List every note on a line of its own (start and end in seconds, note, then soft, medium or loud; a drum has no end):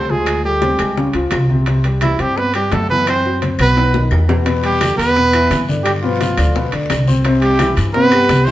0.00 0.73 D2 medium
0.00 0.10 C4 medium
0.00 0.12 C5 medium
0.09 0.38 F3 medium
0.09 0.44 G#3 medium
0.09 0.39 F4 medium
0.09 0.45 G#4 medium
0.09 high bongo soft
0.09 high conga medium
0.26 high bongo medium
0.26 high conga soft
0.26 high timbale medium
0.26 claves medium
0.44 1.11 G3 medium
0.44 0.59 A3 medium
0.44 1.11 G4 medium
0.44 0.59 A4 medium
0.44 high bongo soft
0.44 high conga soft
0.62 0.77 C4 medium
0.62 0.77 C5 medium
0.62 high bongo medium
0.62 high conga medium
0.62 high timbale medium
0.79 1.12 C#2 medium
0.79 0.94 G#3 medium
0.79 0.94 G#4 medium
0.79 high bongo soft
0.79 high conga soft
0.79 high timbale medium
0.79 claves medium
0.97 1.11 C#3 medium
0.97 1.12 C#4 medium
0.97 high bongo medium
0.97 high conga soft
1.13 1.30 C#2 medium
1.13 1.43 F3 medium
1.13 1.43 F4 medium
1.13 high conga soft
1.13 high timbale medium
1.31 2.14 C2 medium
1.31 high bongo medium
1.31 low bongo medium
1.31 high conga medium
1.31 high timbale medium
1.31 low timbale medium
1.31 claves medium
1.49 1.64 C3 medium
1.49 1.64 C4 medium
1.49 high bongo soft
1.49 high conga medium
1.66 1.81 C3 medium
1.66 1.81 C4 medium
1.66 high bongo medium
1.66 high timbale medium
1.84 2.13 G3 medium
1.84 2.14 G4 medium
1.84 high bongo soft
1.84 high timbale medium
2.01 2.22 E3 medium
2.01 2.22 E4 medium
2.01 high bongo medium
2.01 high conga loud
2.01 high timbale medium
2.01 claves medium
2.19 2.68 G2 medium
2.19 2.39 G3 medium
2.19 2.48 C4 medium
2.19 2.39 G4 medium
2.19 2.48 C5 medium
2.19 high bongo soft
2.19 high timbale medium
2.37 2.54 B3 medium
2.37 2.55 B4 loud
2.37 high bongo medium
2.37 high conga soft
2.54 2.73 G3 medium
2.54 2.84 G3 medium
2.54 2.74 G4 medium
2.54 2.84 G4 medium
2.54 high conga soft
2.54 high timbale medium
2.54 claves medium
2.71 3.53 F#2 medium
2.71 2.89 A3 medium
2.71 2.89 A4 medium
2.71 high bongo medium
2.71 low bongo medium
2.71 high conga medium
2.71 high timbale medium
2.71 low timbale medium
2.89 3.19 E3 medium
2.89 3.06 B3 medium
2.89 3.19 E4 medium
2.89 3.06 B4 medium
2.89 high bongo soft
2.89 high conga medium
3.07 3.39 C4 medium
3.07 3.40 C5 medium
3.07 high bongo medium
3.07 high conga soft
3.07 high timbale medium
3.07 claves medium
3.24 3.39 F#3 medium
3.24 3.40 F#4 medium
3.24 high bongo soft
3.24 high conga soft
3.42 3.56 C4 medium
3.42 3.57 C5 medium
3.42 high bongo medium
3.42 high conga medium
3.42 high timbale medium
3.59 4.08 B1 loud
3.59 3.74 F#3 medium
3.59 4.08 B3 medium
3.59 3.74 F#4 medium
3.59 4.09 B4 loud
3.59 high bongo soft
3.59 high conga medium
3.59 high timbale medium
3.59 claves medium
3.77 3.91 B2 medium
3.77 3.91 B3 medium
3.77 high bongo medium
3.77 high timbale medium
3.94 4.23 D#3 medium
3.94 4.23 D#4 medium
3.94 high bongo loud
3.94 low conga medium
4.11 4.93 E2 medium
4.11 low timbale medium
4.11 claves medium
4.28 4.43 B2 medium
4.28 4.43 B3 medium
4.28 low bongo medium
4.28 low conga medium
4.28 low timbale loud
4.45 4.74 B2 medium
4.45 4.74 B3 medium
4.45 4.75 B4 medium
4.45 high bongo medium
4.45 high conga soft
4.45 high timbale medium
4.45 long guiro medium
4.63 4.96 G3 medium
4.63 4.97 G4 medium
4.63 high bongo soft
4.63 high conga soft
4.63 high timbale medium
4.81 5.10 D3 medium
4.81 5.10 D4 medium
4.81 5.10 D5 medium
4.81 high bongo medium
4.81 high conga loud
4.81 high timbale medium
4.81 short guiro medium
4.81 claves medium
4.97 5.47 E2 loud
4.97 5.63 B3 medium
4.97 5.64 B4 loud
4.97 high bongo soft
4.97 high timbale medium
4.97 short guiro medium
5.17 5.31 B2 medium
5.17 5.31 B3 medium
5.17 5.31 B4 medium
5.17 high bongo medium
5.17 high conga soft
5.17 long guiro medium
5.33 5.62 E3 medium
5.33 5.62 E4 medium
5.33 5.62 E5 medium
5.33 high conga soft
5.33 high timbale medium
5.33 claves medium
5.50 6.32 G2 loud
5.50 high bongo medium
5.50 low bongo medium
5.50 high conga medium
5.50 high timbale medium
5.50 short guiro medium
5.68 5.97 D3 medium
5.68 5.98 D4 medium
5.68 5.98 D5 medium
5.68 high bongo soft
5.68 high conga medium
5.68 short guiro medium
5.83 5.92 G3 medium
5.83 5.92 G4 medium
5.83 high bongo medium
5.83 high conga soft
5.83 high timbale medium
5.83 long guiro medium
5.83 claves medium
6.03 6.32 B2 medium
6.03 6.69 F3 medium
6.03 6.32 B3 medium
6.03 6.69 F4 medium
6.03 6.33 B4 medium
6.03 high bongo soft
6.03 high conga soft
6.20 high bongo medium
6.20 high conga loud
6.20 high timbale medium
6.20 short guiro medium
6.38 6.70 D2 loud
6.38 6.52 D3 medium
6.38 6.53 D4 medium
6.38 6.53 D5 medium
6.38 high bongo soft
6.38 high conga soft
6.38 low conga medium
6.38 high timbale medium
6.38 short guiro medium
6.38 claves medium
6.55 6.70 B2 medium
6.55 6.70 B3 medium
6.55 6.71 B4 medium
6.55 high bongo medium
6.55 high conga soft
6.55 low conga medium
6.55 long guiro medium
6.72 6.89 D2 medium
6.72 7.01 D3 medium
6.72 7.02 D4 medium
6.72 7.02 D5 medium
6.72 high conga soft
6.72 high timbale medium
6.90 7.71 C2 medium
6.90 high bongo medium
6.90 low bongo medium
6.90 high conga medium
6.90 high timbale medium
6.90 short guiro medium
6.90 claves medium
7.07 7.22 C4 medium
7.07 7.22 C5 medium
7.07 7.22 C6 medium
7.07 high bongo soft
7.07 high conga medium
7.07 short guiro medium
7.25 7.54 C3 medium
7.25 7.54 C4 medium
7.25 7.54 C5 medium
7.25 high bongo medium
7.25 high conga soft
7.25 high timbale medium
7.25 long guiro medium
7.42 7.75 G3 medium
7.42 7.75 G4 medium
7.42 high bongo soft
7.42 high timbale medium
7.59 7.89 E3 medium
7.59 7.89 E4 medium
7.59 7.89 E5 medium
7.59 high bongo medium
7.59 high conga loud
7.59 high timbale medium
7.59 short guiro medium
7.59 claves medium
7.77 8.26 G2 loud
7.77 high bongo soft
7.77 high timbale medium
7.77 short guiro medium
7.94 8.09 C3 medium
7.94 8.47 B3 loud
7.94 8.09 C4 medium
7.94 8.46 B4 loud
7.94 8.10 C5 medium
7.94 high bongo medium
7.94 high conga soft
7.94 long guiro medium
8.12 8.41 G3 medium
8.12 8.41 G4 medium
8.12 8.41 G5 medium
8.12 high conga soft
8.12 high timbale medium
8.12 claves medium
8.29 8.51 C2 loud
8.29 high bongo medium
8.29 low bongo medium
8.29 high conga medium
8.29 high timbale medium
8.29 short guiro medium
8.45 8.51 E3 medium
8.45 8.51 C4 medium
8.45 8.51 E4 medium
8.45 8.51 C5 loud
8.45 8.51 E5 medium
8.45 high bongo soft
8.45 high conga medium
8.45 short guiro medium